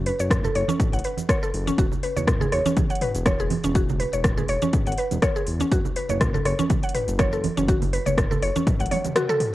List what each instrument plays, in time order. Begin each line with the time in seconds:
Already playing: analog synth bass F#1
0.06 synth pluck B4, open hi-hat
0.19 analog synth bass F#1, synth pluck C#5, closed hi-hat, shaker
0.31 kick, cross-stick, closed hi-hat, mid tom, shaker
0.44 synth pluck A4, low conga, shaker
0.55 analog synth bass F#1, synth pluck C#5, open hi-hat
0.68 synth pluck C#4, closed hi-hat, high conga, shaker
0.80 kick, closed hi-hat, mid tom, shaker
0.93 analog synth bass A1, synth pluck F#5, closed hi-hat, shaker
0.99 closed hi-hat
1.04 synth pluck B4, open hi-hat
1.17 closed hi-hat, high conga, shaker
1.29 synth pluck C#5, kick, cross-stick, closed hi-hat, shaker
1.43 synth pluck A4, shaker
1.54 analog synth bass F#1, open hi-hat
1.67 synth pluck C#4, closed hi-hat, high conga, shaker
1.78 analog synth bass E1, synth pluck F#4, kick, closed hi-hat, shaker
1.92 low conga, shaker
2.03 synth pluck B4, open hi-hat
2.17 analog synth bass E1, synth pluck C#5, closed hi-hat, low conga, shaker
2.27 kick, cross-stick, closed hi-hat, mid tom, shaker
2.41 synth pluck G#4, low conga, shaker
2.52 analog synth bass E1, synth pluck C#5, cross-stick, open hi-hat
2.66 synth pluck C#4, closed hi-hat, high conga, shaker
2.77 kick, closed hi-hat, high conga, low conga, shaker
2.90 synth pluck F#5, closed hi-hat, shaker
2.95 closed hi-hat
3.01 synth pluck B4, mid tom, open hi-hat
3.15 analog synth bass E1, closed hi-hat, shaker
3.26 synth pluck C#5, kick, cross-stick, closed hi-hat, high conga, shaker
3.40 synth pluck G#4, shaker
3.50 open hi-hat, high conga
3.64 analog synth bass E1, synth pluck C#4, closed hi-hat, high conga, shaker
3.75 synth pluck F#4, kick, closed hi-hat, shaker
3.89 low conga, shaker
4.00 synth pluck B4, open hi-hat
4.13 analog synth bass E1, synth pluck C#5, closed hi-hat, shaker
4.24 kick, cross-stick, closed hi-hat, mid tom, shaker
4.37 synth pluck G#4, low conga, shaker
4.48 analog synth bass E1, synth pluck C#5, open hi-hat
4.62 synth pluck C#4, closed hi-hat, high conga, shaker
4.73 kick, closed hi-hat, mid tom, shaker
4.87 analog synth bass G#1, synth pluck F#5, closed hi-hat, shaker
4.92 closed hi-hat
4.98 synth pluck B4, open hi-hat
5.11 analog synth bass E1, closed hi-hat, high conga, shaker
5.22 synth pluck C#5, kick, cross-stick, closed hi-hat, shaker
5.36 synth pluck G#4, shaker
5.47 analog synth bass E1, open hi-hat
5.60 synth pluck C#4, closed hi-hat, high conga, shaker
5.72 analog synth bass F#1, synth pluck F#4, kick, closed hi-hat, shaker
5.85 low conga, shaker
5.96 synth pluck B4, open hi-hat
6.09 analog synth bass F#1, synth pluck C#5, closed hi-hat, low conga, shaker
6.21 kick, cross-stick, closed hi-hat, mid tom, shaker
6.34 synth pluck A4, low conga, shaker
6.45 analog synth bass F#1, synth pluck C#5, cross-stick, open hi-hat
6.59 synth pluck C#4, closed hi-hat, high conga, shaker
6.70 kick, closed hi-hat, high conga, low conga, shaker
6.83 synth pluck F#5, closed hi-hat, shaker
6.89 closed hi-hat
6.95 synth pluck B4, mid tom, open hi-hat
7.08 analog synth bass F#1, closed hi-hat, shaker
7.19 synth pluck C#5, kick, cross-stick, closed hi-hat, high conga, shaker
7.33 synth pluck A4, shaker
7.44 open hi-hat, high conga
7.57 analog synth bass F#1, synth pluck C#4, closed hi-hat, high conga, shaker
7.68 synth pluck F#4, kick, closed hi-hat, shaker
7.82 open hi-hat, low conga, shaker
7.93 synth pluck B4, open hi-hat
8.06 analog synth bass F#1, synth pluck C#5, closed hi-hat, low conga, shaker
8.18 kick, cross-stick, closed hi-hat, mid tom, shaker
8.31 synth pluck A4, low conga, shaker
8.42 analog synth bass F#1, synth pluck C#5, open hi-hat
8.56 synth pluck C#4, closed hi-hat, high conga, shaker
8.67 kick, closed hi-hat, mid tom, high tom, shaker
8.80 analog synth bass A1, synth pluck F#5, closed hi-hat, high tom, shaker
8.86 closed hi-hat
8.91 synth pluck C#5, open hi-hat, high tom, high conga
9.05 closed hi-hat, mid tom, high conga, shaker
9.16 synth pluck F#4, cross-stick, closed hi-hat, mid tom, shaker
9.29 synth pluck A4, mid tom, shaker
9.40 mid tom, open hi-hat